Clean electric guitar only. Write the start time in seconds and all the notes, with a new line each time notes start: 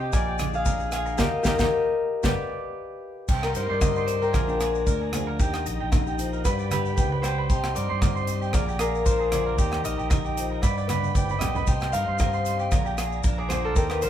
0.01 G4
0.13 A#4
0.27 G4
0.39 G#4
0.66 A#4
0.80 G#4
0.92 G#4
1.06 A#4
1.18 G4 A#4 D#5
1.44 G4 A#4 D#5
1.59 G4 A#4 D#5
2.23 G4 B4 D5
3.29 G4
3.56 A#4
3.70 C5
3.82 A#4
3.97 C5
4.22 G4
4.35 A#4
4.49 G4
4.60 G#4
4.87 A#4
5.01 G#4
5.14 G#4
5.27 A#4
5.39 G4
5.66 D#5
5.80 G4
5.92 A#4
6.07 G4
6.33 A#4
6.45 B4
6.59 D5
6.72 B4
6.98 G4
7.12 B4
7.24 G4
7.38 B4
7.50 G4
7.76 A#4
7.90 C5
8.02 A#4
8.16 C5
8.41 G4
8.54 A#4
8.69 G4
8.80 G#4
9.06 A#4
9.20 G#4
9.33 G#4
9.46 A#4
9.59 G4
9.84 A#4
9.98 G4
10.10 A#4
10.25 G4
10.51 A#4
10.63 B4
10.78 D5
10.90 B4
11.16 G4
11.31 B4
11.42 G4
11.56 B4
11.68 G4
11.94 A#4
12.08 C5
12.20 A#4
12.34 C5
12.60 G4
12.72 A#4
12.86 G4
12.98 G#4
13.24 A#4
13.39 G#4
13.50 G#4
13.64 A#4
13.77 G4
14.03 A#4